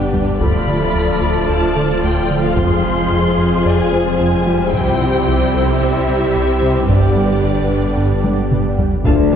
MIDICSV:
0, 0, Header, 1, 12, 480
1, 0, Start_track
1, 0, Tempo, 540541
1, 361, Time_signature, 4, 2, 24, 8
1, 8309, End_track
2, 0, Start_track
2, 0, Title_t, "Violin section"
2, 0, Program_c, 0, 48
2, 356, Note_on_c, 0, 83, 92
2, 1283, Note_off_c, 0, 83, 0
2, 1320, Note_on_c, 0, 81, 74
2, 1800, Note_off_c, 0, 81, 0
2, 1801, Note_on_c, 0, 79, 80
2, 2153, Note_off_c, 0, 79, 0
2, 2171, Note_on_c, 0, 77, 79
2, 2278, Note_on_c, 0, 84, 94
2, 2283, Note_off_c, 0, 77, 0
2, 3239, Note_off_c, 0, 84, 0
2, 3239, Note_on_c, 0, 80, 88
2, 3711, Note_off_c, 0, 80, 0
2, 3722, Note_on_c, 0, 80, 82
2, 4192, Note_off_c, 0, 80, 0
2, 4193, Note_on_c, 0, 79, 94
2, 5157, Note_off_c, 0, 79, 0
2, 5157, Note_on_c, 0, 76, 82
2, 6117, Note_on_c, 0, 74, 67
2, 6119, Note_off_c, 0, 76, 0
2, 7559, Note_off_c, 0, 74, 0
2, 8309, End_track
3, 0, Start_track
3, 0, Title_t, "Violin section"
3, 0, Program_c, 1, 48
3, 0, Note_on_c, 1, 67, 54
3, 0, Note_on_c, 1, 71, 55
3, 326, Note_off_c, 1, 67, 0
3, 326, Note_off_c, 1, 71, 0
3, 373, Note_on_c, 1, 74, 63
3, 374, Note_on_c, 1, 69, 64
3, 2284, Note_on_c, 1, 72, 67
3, 2285, Note_on_c, 1, 68, 67
3, 2287, Note_off_c, 1, 69, 0
3, 2287, Note_off_c, 1, 74, 0
3, 4203, Note_off_c, 1, 68, 0
3, 4206, Note_on_c, 1, 67, 63
3, 6087, Note_off_c, 1, 72, 0
3, 6119, Note_on_c, 1, 71, 54
3, 7830, Note_off_c, 1, 67, 0
3, 7862, Note_off_c, 1, 71, 0
3, 8037, Note_on_c, 1, 77, 60
3, 8039, Note_on_c, 1, 81, 58
3, 8108, Note_off_c, 1, 77, 0
3, 8110, Note_off_c, 1, 81, 0
3, 8279, Note_on_c, 1, 81, 50
3, 8281, Note_on_c, 1, 77, 47
3, 8309, Note_off_c, 1, 77, 0
3, 8309, Note_off_c, 1, 81, 0
3, 8309, End_track
4, 0, Start_track
4, 0, Title_t, "Grand piano"
4, 0, Program_c, 2, 0
4, 0, Control_c, 2, 64, 127
4, 373, Note_on_c, 2, 57, 33
4, 374, Note_on_c, 2, 69, 41
4, 378, Control_c, 2, 64, 0
4, 540, Control_c, 2, 64, 127
4, 1324, Note_on_c, 2, 72, 40
4, 1771, Note_off_c, 2, 57, 0
4, 1772, Note_off_c, 2, 69, 0
4, 2298, Control_c, 2, 64, 0
4, 2445, Control_c, 2, 64, 127
4, 2727, Note_off_c, 2, 72, 0
4, 3249, Note_on_c, 2, 74, 58
4, 3960, Note_on_c, 2, 55, 43
4, 3964, Note_on_c, 2, 67, 61
4, 4217, Control_c, 2, 64, 0
4, 4384, Control_c, 2, 64, 127
4, 4649, Note_off_c, 2, 74, 0
4, 4917, Note_on_c, 2, 69, 44
4, 5365, Note_off_c, 2, 55, 0
4, 5367, Note_off_c, 2, 67, 0
4, 6137, Control_c, 2, 64, 0
4, 6311, Control_c, 2, 64, 127
4, 6323, Note_off_c, 2, 69, 0
4, 8056, Control_c, 2, 64, 0
4, 8189, Control_c, 2, 64, 127
4, 8309, End_track
5, 0, Start_track
5, 0, Title_t, "Analog synth pad"
5, 0, Program_c, 3, 89
5, 0, Note_on_c, 3, 55, 60
5, 0, Note_on_c, 3, 59, 65
5, 0, Note_on_c, 3, 67, 69
5, 0, Note_on_c, 3, 74, 64
5, 364, Note_off_c, 3, 59, 0
5, 365, Note_off_c, 3, 67, 0
5, 367, Note_off_c, 3, 55, 0
5, 368, Note_on_c, 3, 69, 68
5, 369, Note_on_c, 3, 53, 73
5, 372, Note_on_c, 3, 57, 68
5, 2284, Note_off_c, 3, 69, 0
5, 2285, Note_off_c, 3, 74, 0
5, 2286, Note_on_c, 3, 68, 71
5, 2287, Note_off_c, 3, 57, 0
5, 2287, Note_on_c, 3, 72, 69
5, 2289, Note_on_c, 3, 60, 68
5, 4203, Note_off_c, 3, 68, 0
5, 4205, Note_off_c, 3, 53, 0
5, 4205, Note_on_c, 3, 67, 72
5, 4209, Note_on_c, 3, 64, 66
5, 6124, Note_off_c, 3, 72, 0
5, 6125, Note_off_c, 3, 60, 0
5, 6125, Note_off_c, 3, 64, 0
5, 6127, Note_on_c, 3, 74, 69
5, 6129, Note_on_c, 3, 59, 67
5, 6131, Note_on_c, 3, 50, 66
5, 8033, Note_off_c, 3, 74, 0
5, 8038, Note_on_c, 3, 69, 73
5, 8040, Note_on_c, 3, 57, 76
5, 8043, Note_off_c, 3, 67, 0
5, 8043, Note_on_c, 3, 53, 75
5, 8043, Note_on_c, 3, 74, 72
5, 8045, Note_off_c, 3, 59, 0
5, 8046, Note_off_c, 3, 50, 0
5, 8309, Note_off_c, 3, 53, 0
5, 8309, Note_off_c, 3, 57, 0
5, 8309, Note_off_c, 3, 69, 0
5, 8309, Note_off_c, 3, 74, 0
5, 8309, End_track
6, 0, Start_track
6, 0, Title_t, "Viola section"
6, 0, Program_c, 4, 48
6, 0, Note_on_c, 4, 55, 51
6, 0, Note_on_c, 4, 62, 60
6, 362, Note_off_c, 4, 55, 0
6, 364, Note_off_c, 4, 62, 0
6, 364, Note_on_c, 4, 53, 63
6, 367, Note_on_c, 4, 65, 65
6, 4167, Note_off_c, 4, 53, 0
6, 4168, Note_off_c, 4, 65, 0
6, 4201, Note_on_c, 4, 64, 73
6, 4202, Note_on_c, 4, 55, 69
6, 6085, Note_off_c, 4, 64, 0
6, 6124, Note_on_c, 4, 62, 57
6, 7828, Note_off_c, 4, 55, 0
6, 7830, Note_off_c, 4, 62, 0
6, 8039, Note_on_c, 4, 65, 61
6, 8040, Note_on_c, 4, 57, 58
6, 8110, Note_off_c, 4, 65, 0
6, 8112, Note_off_c, 4, 57, 0
6, 8309, End_track
7, 0, Start_track
7, 0, Title_t, "French horn section"
7, 0, Program_c, 5, 60
7, 0, Note_on_c, 5, 59, 56
7, 0, Note_on_c, 5, 62, 53
7, 317, Note_off_c, 5, 59, 0
7, 320, Note_off_c, 5, 62, 0
7, 364, Note_on_c, 5, 53, 57
7, 369, Note_on_c, 5, 57, 61
7, 2134, Note_off_c, 5, 57, 0
7, 2285, Note_on_c, 5, 56, 68
7, 4167, Note_off_c, 5, 56, 0
7, 4201, Note_on_c, 5, 55, 62
7, 5155, Note_on_c, 5, 64, 56
7, 5162, Note_off_c, 5, 53, 0
7, 6118, Note_off_c, 5, 64, 0
7, 6118, Note_on_c, 5, 59, 58
7, 7765, Note_off_c, 5, 55, 0
7, 7765, Note_off_c, 5, 59, 0
7, 8026, Note_on_c, 5, 62, 90
7, 8309, Note_off_c, 5, 62, 0
7, 8309, End_track
8, 0, Start_track
8, 0, Title_t, "Analog synth bass"
8, 0, Program_c, 6, 38
8, 125, Note_on_c, 6, 55, 51
8, 267, Note_off_c, 6, 55, 0
8, 359, Note_on_c, 6, 38, 90
8, 504, Note_off_c, 6, 38, 0
8, 600, Note_on_c, 6, 50, 55
8, 744, Note_off_c, 6, 50, 0
8, 844, Note_on_c, 6, 38, 55
8, 987, Note_off_c, 6, 38, 0
8, 1077, Note_on_c, 6, 38, 50
8, 1222, Note_off_c, 6, 38, 0
8, 1323, Note_on_c, 6, 38, 75
8, 1466, Note_off_c, 6, 38, 0
8, 1566, Note_on_c, 6, 50, 58
8, 1708, Note_off_c, 6, 50, 0
8, 1808, Note_on_c, 6, 38, 62
8, 1950, Note_off_c, 6, 38, 0
8, 2049, Note_on_c, 6, 50, 58
8, 2190, Note_off_c, 6, 50, 0
8, 2292, Note_on_c, 6, 41, 85
8, 2433, Note_off_c, 6, 41, 0
8, 2527, Note_on_c, 6, 53, 56
8, 2669, Note_off_c, 6, 53, 0
8, 2765, Note_on_c, 6, 41, 55
8, 2908, Note_off_c, 6, 41, 0
8, 3002, Note_on_c, 6, 41, 57
8, 3145, Note_off_c, 6, 41, 0
8, 3246, Note_on_c, 6, 41, 84
8, 3388, Note_off_c, 6, 41, 0
8, 3485, Note_on_c, 6, 53, 59
8, 3628, Note_off_c, 6, 53, 0
8, 3725, Note_on_c, 6, 41, 63
8, 3868, Note_off_c, 6, 41, 0
8, 3968, Note_on_c, 6, 53, 61
8, 4110, Note_off_c, 6, 53, 0
8, 4206, Note_on_c, 6, 36, 90
8, 4349, Note_off_c, 6, 36, 0
8, 4453, Note_on_c, 6, 48, 61
8, 4593, Note_off_c, 6, 48, 0
8, 4690, Note_on_c, 6, 36, 58
8, 4831, Note_off_c, 6, 36, 0
8, 4932, Note_on_c, 6, 36, 60
8, 5073, Note_off_c, 6, 36, 0
8, 5170, Note_on_c, 6, 36, 74
8, 5311, Note_off_c, 6, 36, 0
8, 5408, Note_on_c, 6, 48, 58
8, 5550, Note_off_c, 6, 48, 0
8, 5648, Note_on_c, 6, 36, 65
8, 5790, Note_off_c, 6, 36, 0
8, 5881, Note_on_c, 6, 48, 55
8, 6025, Note_off_c, 6, 48, 0
8, 6121, Note_on_c, 6, 43, 88
8, 6265, Note_off_c, 6, 43, 0
8, 6362, Note_on_c, 6, 55, 54
8, 6505, Note_off_c, 6, 55, 0
8, 6598, Note_on_c, 6, 43, 58
8, 6743, Note_off_c, 6, 43, 0
8, 6834, Note_on_c, 6, 43, 54
8, 6980, Note_off_c, 6, 43, 0
8, 7079, Note_on_c, 6, 43, 83
8, 7223, Note_off_c, 6, 43, 0
8, 7321, Note_on_c, 6, 55, 58
8, 7465, Note_off_c, 6, 55, 0
8, 7560, Note_on_c, 6, 43, 60
8, 7704, Note_off_c, 6, 43, 0
8, 7803, Note_on_c, 6, 55, 56
8, 7946, Note_off_c, 6, 55, 0
8, 8045, Note_on_c, 6, 38, 101
8, 8187, Note_off_c, 6, 38, 0
8, 8309, End_track
9, 0, Start_track
9, 0, Title_t, "Cello section"
9, 0, Program_c, 7, 48
9, 0, Note_on_c, 7, 43, 52
9, 325, Note_off_c, 7, 43, 0
9, 366, Note_on_c, 7, 38, 59
9, 2283, Note_off_c, 7, 38, 0
9, 2287, Note_on_c, 7, 41, 66
9, 4202, Note_on_c, 7, 48, 69
9, 4204, Note_off_c, 7, 41, 0
9, 6086, Note_off_c, 7, 48, 0
9, 6123, Note_on_c, 7, 43, 55
9, 7864, Note_off_c, 7, 43, 0
9, 8040, Note_on_c, 7, 38, 69
9, 8309, Note_off_c, 7, 38, 0
9, 8309, End_track
10, 0, Start_track
10, 0, Title_t, "Double bass section"
10, 0, Program_c, 8, 48
10, 8038, Note_on_c, 8, 38, 69
10, 8309, Note_off_c, 8, 38, 0
10, 8309, End_track
11, 0, Start_track
11, 0, Title_t, "Detuned saw bass"
11, 0, Program_c, 10, 39
11, 0, Note_on_c, 10, 31, 59
11, 367, Note_on_c, 10, 26, 63
11, 380, Note_off_c, 10, 31, 0
11, 2284, Note_on_c, 10, 29, 61
11, 2297, Note_off_c, 10, 26, 0
11, 4202, Note_on_c, 10, 36, 61
11, 4216, Note_off_c, 10, 29, 0
11, 6122, Note_on_c, 10, 31, 59
11, 6135, Note_off_c, 10, 36, 0
11, 8032, Note_off_c, 10, 31, 0
11, 8038, Note_on_c, 10, 26, 71
11, 8309, Note_off_c, 10, 26, 0
11, 8309, End_track
12, 0, Start_track
12, 0, Title_t, "Taiko and cinematic ensemble drums"
12, 121, Note_on_c, 9, 43, 86
12, 210, Note_off_c, 9, 43, 0
12, 360, Note_on_c, 9, 41, 85
12, 449, Note_off_c, 9, 41, 0
12, 2277, Note_on_c, 9, 41, 89
12, 2365, Note_off_c, 9, 41, 0
12, 4200, Note_on_c, 9, 41, 86
12, 4289, Note_off_c, 9, 41, 0
12, 6122, Note_on_c, 9, 41, 85
12, 6210, Note_off_c, 9, 41, 0
12, 7320, Note_on_c, 9, 48, 64
12, 7409, Note_off_c, 9, 48, 0
12, 7559, Note_on_c, 9, 47, 78
12, 7648, Note_off_c, 9, 47, 0
12, 7800, Note_on_c, 9, 43, 86
12, 7889, Note_off_c, 9, 43, 0
12, 8039, Note_on_c, 9, 41, 96
12, 8128, Note_off_c, 9, 41, 0
12, 8276, Note_on_c, 9, 45, 42
12, 8309, Note_off_c, 9, 45, 0
12, 8309, End_track
0, 0, End_of_file